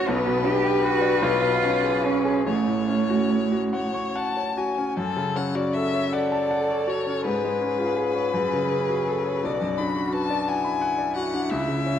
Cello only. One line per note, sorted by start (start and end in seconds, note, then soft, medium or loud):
0.08 0.47 B3 loud
0.45 0.83 G4 loud
0.84 1.25 F#4 loud
1.23 2.06 F4 loud
2.05 2.46 C#4 loud
2.46 3.71 A3 medium
6.13 7.27 A4 medium
7.26 8.34 G#4 medium
8.35 9.46 G#4 medium
9.45 10.49 F#4 medium
10.48 11.99 E4 medium